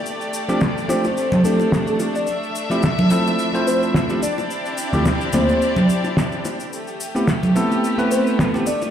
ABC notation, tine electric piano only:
X:1
M:4/4
L:1/16
Q:"Swing 16ths" 1/4=108
K:Ddor
V:1 name="Tine electric piano"
z3 [F,A,CDG] z2 [F,A,CDG] z3 [F,A,CDG]6 | z3 [F,A,CEG] z2 [F,A,CEA]3 [F,A,CEc]4 [F,A,CEG] z2 | z3 [D,,F,A,CEG] z2 [D,,F,A,CEG] z8 z | z3 [A,B,CEG] z2 [A,B,CEA]3 [A,B,CEB]4 [A,B,CEG] z2 |]